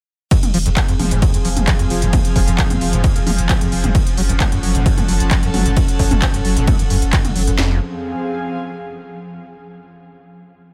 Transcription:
0.31 F2 F3 C4, kick, closed hi-hat, ride
0.38 G#4
0.43 closed hi-hat, mid tom
0.54 F1 F3, open hi-hat
0.66 F1 F2, closed hi-hat
0.70 G#5
0.77 kick, clap, closed hi-hat, ride
0.88 F1 F2, closed hi-hat
0.97 F1 F3 F5, open hi-hat, mid tom
1.11 F1 G2, closed hi-hat
1.22 F2, kick, closed hi-hat, ride
1.34 F2, closed hi-hat
1.45 F1 F3, open hi-hat
1.57 F1, closed hi-hat, mid tom
1.67 F3, kick, clap, closed hi-hat, ride
1.79 F1 F2, closed hi-hat
1.90 F1 F3, open hi-hat
2.02 F1 F2, closed hi-hat
2.13 F2, kick, closed hi-hat, mid tom, ride
2.25 closed hi-hat
2.36 F1 F3, kick, open hi-hat
2.47 F1 F2, closed hi-hat
2.58 kick, clap, closed hi-hat, ride
2.70 F1 F2, closed hi-hat, mid tom
2.81 F1 F3, open hi-hat
2.93 F1 G2, closed hi-hat
3.04 F2, kick, closed hi-hat, ride
3.16 F2, closed hi-hat
3.27 F1 F3, open hi-hat, mid tom
3.38 F1, closed hi-hat
3.49 F3, kick, clap, closed hi-hat, ride
3.61 F1 F2, closed hi-hat
3.72 F1 F3, open hi-hat
3.84 F1 F2, closed hi-hat, mid tom
3.95 F#2 C#4, kick, closed hi-hat, ride
4.03 F#5, closed hi-hat
4.17 F#1 F#3, open hi-hat
4.24 A4
4.29 F#1 F#2, closed hi-hat
4.40 A5, kick, clap, closed hi-hat, mid tom, ride
4.52 F#1 F#2, closed hi-hat
4.63 F#1 F#3, open hi-hat
4.75 F#1 G#2, closed hi-hat
4.86 F#2, kick, closed hi-hat, ride
4.98 F#2, closed hi-hat, mid tom
5.08 F#1 F#3, open hi-hat
5.20 F#1, closed hi-hat
5.31 F#3, kick, clap, closed hi-hat, ride
5.43 F#1 F#2, closed hi-hat
5.54 F#1 F#3, open hi-hat, mid tom
5.66 F#1 F#2, closed hi-hat
5.77 F#2, kick, closed hi-hat, ride
5.88 closed hi-hat
5.99 F#1 F#3, kick, open hi-hat
6.11 F#1 F#2, closed hi-hat, mid tom
6.22 kick, clap, closed hi-hat, ride
6.34 F#1 F#2, closed hi-hat
6.45 F#1 F#3, open hi-hat
6.57 F#1 G#2, closed hi-hat
6.67 F#2, kick, closed hi-hat, mid tom, ride
6.79 F#2, closed hi-hat
6.90 F#1 F#2, open hi-hat
7.02 F#1, closed hi-hat
7.13 F#2, kick, clap, closed hi-hat, ride
7.25 F#1 C#3, closed hi-hat, mid tom
7.36 F#1 F#3, open hi-hat
7.47 F#1 F#2, closed hi-hat
7.58 F1 F2 C4, snare
7.66 G#4
7.73 F5
7.79 G#5

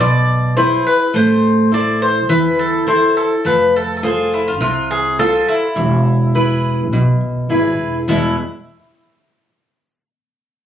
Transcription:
Already playing: B1
0.00 B2 D5
0.57 E4 G#4 B4 C5
0.87 B4
1.14 A1 A3 C5
1.71 E4 A4 C5 D5
2.02 C5
2.29 E2 E3 B4
2.59 A4
2.87 E4 A4 C5
3.17 A4
3.45 F1 F3 B4
3.76 A4
3.97 A4
4.03 F4 G#4 A4 C5
4.34 E4
4.48 F4
4.60 C2 C3 F4
4.91 G#4
5.19 F4 A4 C5
5.49 E4
5.76 E1 E3
6.35 E4 G#4 B4
6.92 B1 B2
7.49 G#1 E4 G#4 B4
7.79 E1
8.08 E2 B2 E3 G#3 B3 E4

